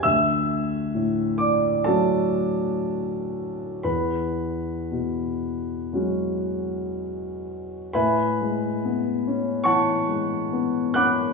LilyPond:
<<
  \new Staff \with { instrumentName = "Grand piano" } { \time 4/4 \key a \major \tempo 4 = 65 <e'' e'''>4. <d'' d'''>8 <a' a''>2 | <b' b''>2.~ <b' b''>8 r8 | <b' e'' gis'' b''>2 <cis'' fis'' a'' cis'''>4. <fis'' b'' d''' fis'''>8 | }
  \new Staff \with { instrumentName = "Grand piano" } { \clef bass \time 4/4 \key a \major d,4 a,4 <fis a cis' fis'>2 | e,4 b,4 <fis gis cis' fis'>2 | a,8 gis8 b8 cis'8 e8 gis8 b8 cis'8 | }
>>